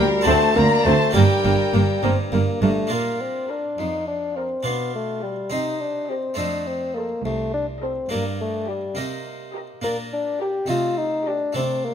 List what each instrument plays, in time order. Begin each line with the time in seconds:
Already playing: harpsichord D2 A#3 D4 G4, bassoon G3, violin section A#4
0.21 harpsichord C4 D4 F#4, violin section A5
0.26 harpsichord D2, double bass section D2, cello section D2, bassoon A3, viola section C4, violin section C5
0.55 double bass section D2, harpsichord D2, cello section D2, bassoon A#3, viola section C4, violin section D5 A#5
0.84 double bass section D2, cello section D2, harpsichord D2, bassoon A3, viola section C4, violin section C5 A5
1.11 double bass section G1, bassoon G3, harpsichord A#3 D4 G4, viola section A#3, violin section G5
1.15 harpsichord G2, cello section G2, violin section A#4
1.44 double bass section G1, harpsichord G2, cello section G2, viola section A#3
1.73 double bass section G1, harpsichord G2, cello section G2, viola section A#3
2.03 double bass section G1, harpsichord G2, cello section G2, viola section A#3, bassoon C4
2.32 double bass section G1, harpsichord G2, cello section G2, bassoon A#3, viola section A#3
2.61 double bass section G1, cello section G2, harpsichord G2, bassoon A3, viola section A#3
2.87 harpsichord A#3 D4 F4
2.91 harpsichord A#2, cello section A#2, bassoon A#3
3.21 bassoon C4
3.49 bassoon D4, viola section A#4, violin section D5 F5
3.78 harpsichord F2, cello section F2, bassoon D#4
4.08 bassoon D4
4.36 bassoon C4, viola section A#4, violin section D5 F5
4.63 cello section B2, harpsichord B2 D4 F4, bassoon B3
4.95 bassoon A3
5.22 bassoon G3, viola section G4, violin section D5 F5
5.50 cello section C3, harpsichord C3 C4 D#4, bassoon D#4
5.81 bassoon D4
6.09 bassoon C4, viola section G4, violin section C5 D#5
6.34 harpsichord A3 C4 D#4, bassoon D4
6.38 cello section F2, harpsichord F2
6.67 bassoon C4
6.95 bassoon A#3, viola section A4, violin section C5 D#5
7.25 cello section C2, harpsichord C2, bassoon A3
7.54 bassoon D4
7.82 bassoon C4, viola section A4, violin section C5 D#5
8.09 cello section G2, harpsichord G2 A#3 D4, bassoon A#3
8.41 bassoon A3
8.68 bassoon G3, viola section G4, violin section G4 D5
8.95 cello section C3, harpsichord C3 A#3 D#4
9.55 viola section G4, violin section A#4 D#5
9.82 cello section A#2, harpsichord A#2 A#3 D4, bassoon A#3
10.13 bassoon D4
10.41 viola section G4, bassoon G4, violin section A#4 D5
10.66 harpsichord C3 A3 D#4, cello section C3, bassoon F4
10.98 bassoon D#4
11.27 bassoon D4, viola section G4, violin section A4 D#5
11.53 harpsichord C3 A3 D4, cello section C3, bassoon C4
11.85 bassoon A#3